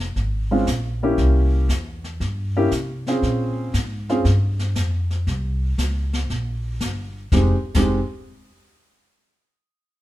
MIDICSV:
0, 0, Header, 1, 4, 480
1, 0, Start_track
1, 0, Key_signature, -4, "minor"
1, 0, Tempo, 511945
1, 1104, Time_signature, 4, 2, 24, 8
1, 9392, End_track
2, 0, Start_track
2, 0, Title_t, "Grand piano"
2, 0, Program_c, 0, 0
2, 479, Note_on_c, 0, 56, 64
2, 485, Note_on_c, 0, 60, 58
2, 485, Note_on_c, 0, 61, 58
2, 489, Note_on_c, 0, 65, 67
2, 612, Note_off_c, 0, 56, 0
2, 615, Note_off_c, 0, 60, 0
2, 615, Note_off_c, 0, 61, 0
2, 617, Note_off_c, 0, 65, 0
2, 963, Note_on_c, 0, 58, 64
2, 968, Note_on_c, 0, 64, 63
2, 969, Note_on_c, 0, 61, 64
2, 970, Note_on_c, 0, 67, 74
2, 1558, Note_off_c, 0, 58, 0
2, 1560, Note_off_c, 0, 64, 0
2, 1561, Note_off_c, 0, 61, 0
2, 1562, Note_off_c, 0, 67, 0
2, 2405, Note_on_c, 0, 58, 67
2, 2406, Note_on_c, 0, 61, 64
2, 2408, Note_on_c, 0, 64, 65
2, 2409, Note_on_c, 0, 67, 83
2, 2534, Note_off_c, 0, 58, 0
2, 2534, Note_off_c, 0, 61, 0
2, 2535, Note_off_c, 0, 64, 0
2, 2536, Note_off_c, 0, 67, 0
2, 2885, Note_on_c, 0, 60, 62
2, 2890, Note_on_c, 0, 61, 52
2, 2891, Note_on_c, 0, 65, 49
2, 2892, Note_on_c, 0, 68, 63
2, 3478, Note_off_c, 0, 60, 0
2, 3481, Note_off_c, 0, 61, 0
2, 3481, Note_off_c, 0, 65, 0
2, 3482, Note_off_c, 0, 68, 0
2, 3840, Note_on_c, 0, 61, 62
2, 3841, Note_on_c, 0, 60, 64
2, 3843, Note_on_c, 0, 65, 60
2, 3848, Note_on_c, 0, 68, 68
2, 3971, Note_off_c, 0, 60, 0
2, 3971, Note_off_c, 0, 61, 0
2, 3972, Note_off_c, 0, 65, 0
2, 3975, Note_off_c, 0, 68, 0
2, 6872, Note_on_c, 0, 56, 59
2, 6872, Note_on_c, 0, 60, 57
2, 6880, Note_on_c, 0, 67, 62
2, 6881, Note_on_c, 0, 63, 53
2, 7066, Note_off_c, 0, 56, 0
2, 7066, Note_off_c, 0, 60, 0
2, 7070, Note_off_c, 0, 67, 0
2, 7071, Note_off_c, 0, 63, 0
2, 7276, Note_on_c, 0, 56, 59
2, 7280, Note_on_c, 0, 60, 60
2, 7281, Note_on_c, 0, 63, 55
2, 7288, Note_on_c, 0, 67, 68
2, 7480, Note_off_c, 0, 56, 0
2, 7482, Note_off_c, 0, 60, 0
2, 7483, Note_off_c, 0, 63, 0
2, 7486, Note_off_c, 0, 67, 0
2, 9392, End_track
3, 0, Start_track
3, 0, Title_t, "Upright bass"
3, 0, Program_c, 1, 32
3, 0, Note_on_c, 1, 29, 78
3, 129, Note_off_c, 1, 29, 0
3, 149, Note_on_c, 1, 32, 72
3, 612, Note_off_c, 1, 32, 0
3, 626, Note_on_c, 1, 34, 80
3, 1090, Note_off_c, 1, 34, 0
3, 1105, Note_on_c, 1, 36, 83
3, 1569, Note_off_c, 1, 36, 0
3, 1584, Note_on_c, 1, 40, 86
3, 2049, Note_off_c, 1, 40, 0
3, 2066, Note_on_c, 1, 43, 83
3, 2530, Note_off_c, 1, 43, 0
3, 2546, Note_on_c, 1, 48, 81
3, 3010, Note_off_c, 1, 48, 0
3, 3023, Note_on_c, 1, 46, 85
3, 3488, Note_off_c, 1, 46, 0
3, 3504, Note_on_c, 1, 44, 82
3, 3968, Note_off_c, 1, 44, 0
3, 3981, Note_on_c, 1, 43, 79
3, 4447, Note_off_c, 1, 43, 0
3, 4458, Note_on_c, 1, 41, 74
3, 4926, Note_off_c, 1, 41, 0
3, 4940, Note_on_c, 1, 36, 84
3, 5407, Note_off_c, 1, 36, 0
3, 5419, Note_on_c, 1, 37, 81
3, 5887, Note_off_c, 1, 37, 0
3, 5907, Note_on_c, 1, 34, 76
3, 6371, Note_off_c, 1, 34, 0
3, 6382, Note_on_c, 1, 31, 79
3, 6849, Note_off_c, 1, 31, 0
3, 6863, Note_on_c, 1, 29, 87
3, 7047, Note_off_c, 1, 29, 0
3, 7270, Note_on_c, 1, 29, 80
3, 7493, Note_off_c, 1, 29, 0
3, 9392, End_track
4, 0, Start_track
4, 0, Title_t, "Drums"
4, 146, Note_on_c, 9, 36, 21
4, 150, Note_on_c, 9, 25, 51
4, 150, Note_on_c, 9, 38, 41
4, 240, Note_off_c, 9, 36, 0
4, 244, Note_off_c, 9, 38, 0
4, 625, Note_on_c, 9, 36, 22
4, 627, Note_on_c, 9, 38, 54
4, 627, Note_on_c, 9, 44, 56
4, 719, Note_off_c, 9, 36, 0
4, 721, Note_off_c, 9, 38, 0
4, 721, Note_off_c, 9, 44, 0
4, 1104, Note_off_c, 9, 25, 0
4, 1104, Note_on_c, 9, 25, 46
4, 1104, Note_on_c, 9, 36, 22
4, 1104, Note_on_c, 9, 38, 45
4, 1197, Note_off_c, 9, 38, 0
4, 1198, Note_off_c, 9, 36, 0
4, 1584, Note_on_c, 9, 36, 18
4, 1586, Note_on_c, 9, 38, 60
4, 1586, Note_on_c, 9, 44, 48
4, 1678, Note_off_c, 9, 36, 0
4, 1680, Note_off_c, 9, 38, 0
4, 1680, Note_off_c, 9, 44, 0
4, 1915, Note_on_c, 9, 38, 40
4, 2009, Note_off_c, 9, 38, 0
4, 2064, Note_on_c, 9, 36, 19
4, 2069, Note_off_c, 9, 25, 0
4, 2069, Note_on_c, 9, 25, 41
4, 2069, Note_on_c, 9, 38, 43
4, 2158, Note_off_c, 9, 36, 0
4, 2163, Note_off_c, 9, 38, 0
4, 2543, Note_on_c, 9, 36, 20
4, 2545, Note_on_c, 9, 38, 52
4, 2545, Note_on_c, 9, 44, 53
4, 2637, Note_off_c, 9, 36, 0
4, 2639, Note_off_c, 9, 38, 0
4, 2639, Note_off_c, 9, 44, 0
4, 2874, Note_on_c, 9, 38, 37
4, 2968, Note_off_c, 9, 38, 0
4, 3024, Note_on_c, 9, 36, 18
4, 3029, Note_off_c, 9, 25, 0
4, 3029, Note_on_c, 9, 25, 54
4, 3029, Note_on_c, 9, 38, 42
4, 3118, Note_off_c, 9, 36, 0
4, 3123, Note_off_c, 9, 38, 0
4, 3502, Note_on_c, 9, 36, 19
4, 3504, Note_on_c, 9, 38, 53
4, 3504, Note_on_c, 9, 44, 59
4, 3596, Note_off_c, 9, 36, 0
4, 3598, Note_off_c, 9, 38, 0
4, 3598, Note_off_c, 9, 44, 0
4, 3837, Note_on_c, 9, 38, 39
4, 3931, Note_off_c, 9, 38, 0
4, 3981, Note_on_c, 9, 36, 21
4, 3982, Note_off_c, 9, 25, 0
4, 3982, Note_on_c, 9, 25, 43
4, 3982, Note_on_c, 9, 38, 44
4, 4074, Note_off_c, 9, 36, 0
4, 4076, Note_off_c, 9, 38, 0
4, 4306, Note_on_c, 9, 38, 48
4, 4400, Note_off_c, 9, 38, 0
4, 4458, Note_on_c, 9, 38, 58
4, 4458, Note_on_c, 9, 44, 51
4, 4460, Note_on_c, 9, 36, 16
4, 4552, Note_off_c, 9, 38, 0
4, 4552, Note_off_c, 9, 44, 0
4, 4554, Note_off_c, 9, 36, 0
4, 4786, Note_on_c, 9, 38, 38
4, 4880, Note_off_c, 9, 38, 0
4, 4940, Note_on_c, 9, 36, 21
4, 4942, Note_off_c, 9, 25, 0
4, 4942, Note_on_c, 9, 25, 48
4, 4942, Note_on_c, 9, 38, 42
4, 5034, Note_off_c, 9, 36, 0
4, 5036, Note_off_c, 9, 38, 0
4, 5420, Note_on_c, 9, 36, 20
4, 5422, Note_on_c, 9, 38, 53
4, 5422, Note_on_c, 9, 44, 50
4, 5514, Note_off_c, 9, 36, 0
4, 5516, Note_off_c, 9, 38, 0
4, 5516, Note_off_c, 9, 44, 0
4, 5751, Note_on_c, 9, 38, 40
4, 5844, Note_off_c, 9, 38, 0
4, 5903, Note_on_c, 9, 36, 21
4, 5904, Note_off_c, 9, 25, 0
4, 5904, Note_on_c, 9, 25, 49
4, 5904, Note_on_c, 9, 38, 40
4, 5997, Note_off_c, 9, 36, 0
4, 5998, Note_off_c, 9, 38, 0
4, 6380, Note_on_c, 9, 38, 49
4, 6380, Note_on_c, 9, 44, 53
4, 6381, Note_on_c, 9, 36, 23
4, 6474, Note_off_c, 9, 38, 0
4, 6474, Note_off_c, 9, 44, 0
4, 6475, Note_off_c, 9, 36, 0
4, 6862, Note_on_c, 9, 36, 89
4, 6862, Note_on_c, 9, 38, 70
4, 6956, Note_off_c, 9, 36, 0
4, 6956, Note_off_c, 9, 38, 0
4, 7255, Note_off_c, 9, 25, 0
4, 7262, Note_on_c, 9, 38, 74
4, 7262, Note_on_c, 9, 49, 76
4, 7267, Note_on_c, 9, 36, 88
4, 7355, Note_off_c, 9, 38, 0
4, 7355, Note_off_c, 9, 49, 0
4, 7360, Note_off_c, 9, 36, 0
4, 9392, End_track
0, 0, End_of_file